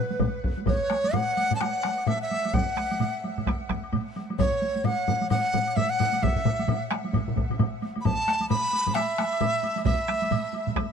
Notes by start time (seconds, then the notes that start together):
Already playing: B4
0.10 taiko high
0.19 taiko, taiko low-mid, taiko mid, taiko high, high woodblock
0.44 taiko
0.57 taiko high
0.66 C#5, taiko, taiko low-mid, taiko high, high woodblock
0.90 taiko rim, taiko high, high woodblock
1.04 taiko high, high woodblock
1.13 F#5, taiko low-mid, taiko high, high woodblock
1.37 taiko high, high woodblock
1.51 taiko low-mid, taiko high, high woodblock
1.55 A5
1.60 F#5, taiko rim, taiko high, high woodblock
1.84 taiko rim, taiko high, high woodblock
1.98 high woodblock
2.07 E5, taiko low-mid, taiko high, high woodblock
2.22 E5
2.31 taiko high, high woodblock
2.45 taiko high, high woodblock
2.53 F#5, taiko, taiko mid, taiko high, high woodblock
2.77 taiko rim, taiko high, high woodblock
2.91 taiko high, high woodblock
3.00 taiko mid, taiko high, high woodblock
3.24 taiko high, high woodblock
3.38 taiko mid, taiko high, high woodblock
3.46 taiko rim, taiko, taiko high, high woodblock
3.70 taiko rim, taiko, taiko high, high woodblock
3.84 high woodblock
3.93 taiko mid, taiko high, high woodblock
4.16 taiko high, high woodblock
4.30 taiko high, high woodblock
4.39 C#5, taiko, taiko low-mid, taiko high, high woodblock
4.62 taiko high
4.76 taiko high
4.84 F#5, taiko low-mid, taiko high, high woodblock
5.08 taiko low-mid, taiko high, high woodblock
5.21 taiko high, high woodblock
5.30 F#5, taiko low-mid, taiko high, high woodblock
5.53 taiko low-mid, taiko high, high woodblock
5.67 high woodblock
5.76 E5, taiko low-mid, taiko high, high woodblock
5.90 F#5
5.99 taiko low-mid, taiko high, high woodblock
6.13 taiko high, high woodblock
6.22 E5, taiko, taiko low-mid, taiko mid, taiko high, high woodblock
6.36 taiko low-mid, taiko mid
6.45 taiko low-mid, taiko mid, taiko high, high woodblock
6.59 taiko high, high woodblock
6.68 taiko low-mid, taiko mid, taiko high, high woodblock
6.91 taiko rim, taiko high, high woodblock
7.04 taiko high, high woodblock
7.13 taiko, taiko low-mid, taiko mid, taiko high, high woodblock
7.28 taiko low-mid, taiko mid
7.36 taiko, taiko low-mid, taiko mid, taiko high, high woodblock
7.50 taiko low-mid, taiko mid, high woodblock
7.59 taiko low-mid, taiko mid, taiko high, high woodblock
7.82 taiko high, high woodblock
7.96 taiko high, high woodblock
8.01 B5, high woodblock
8.05 A5, taiko, taiko low-mid, taiko high
8.28 taiko rim, taiko high
8.41 taiko high, high woodblock
8.49 B5, taiko low-mid, taiko high, high woodblock
8.73 taiko high, high woodblock
8.86 taiko low-mid, taiko high, high woodblock
8.95 E5, taiko rim, taiko high, high woodblock
9.18 taiko rim, taiko high, high woodblock
9.32 high woodblock
9.41 taiko low-mid, taiko high, high woodblock
9.63 taiko high, high woodblock
9.77 taiko high, high woodblock
9.85 E5, taiko, taiko mid, taiko high, high woodblock
10.08 taiko rim, taiko high, high woodblock
10.22 taiko high, high woodblock
10.31 taiko mid, taiko high, high woodblock
10.53 taiko high, high woodblock
10.67 taiko mid, taiko high
10.76 taiko rim, taiko, taiko high, high woodblock